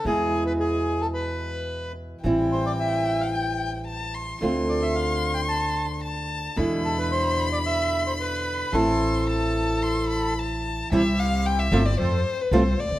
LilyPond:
<<
  \new Staff \with { instrumentName = "Violin" } { \time 4/4 \key a \minor \tempo 4 = 111 r1 | g''2. a''8 c'''8 | c'''2. a''4 | b''1 |
c'''4 a''4 c'''8 b''8 a''4 | \key c \major e''8 f''8 g''16 e''8 d''16 c''8. b'16 c''8 d''8 | }
  \new Staff \with { instrumentName = "Bandoneon" } { \time 4/4 \key a \minor gis'8. b'16 gis'8. a'16 b'4. r8 | r8 c''16 d''16 e''8. f''16 g''8. r4 r16 | r8 d''16 e''16 f''8. g''16 a''8. r4 r16 | r8 a'16 b'16 c''8. d''16 e''8. c''16 b'4 |
a'2. r4 | \key c \major r1 | }
  \new Staff \with { instrumentName = "Bandoneon" } { \time 4/4 \key a \minor r1 | r1 | r1 | r1 |
r1 | \key c \major <c' e' g'>4. <c' e' g'>8 <c' f' a'>8 r8 <c' f' a'>8 r8 | }
  \new Staff \with { instrumentName = "Nylon-string guitar" } { \time 4/4 \key a \minor <b, e gis b e'>1 | <e g c' e'>1 | <d a c' f'>1 | <b, d gis e'>1 |
<e a c' e'>1 | \key c \major <c e g c' e'>8 r4 <c f a c' f'>8 r4 <c f a c' f'>8 r8 | }
  \new Staff \with { instrumentName = "Upright bass" } { \clef bass \time 4/4 \key a \minor e,2.~ e,8. r16 | a,,2.~ a,,8. r16 | d,2.~ d,8. r16 | e,2.~ e,8. r16 |
a,,2.~ a,,8. r16 | \key c \major c,4~ c,16. r32 g,,16. r32 f,16. r8 r32 c,16. r16 des,32 d,32 r32 | }
>>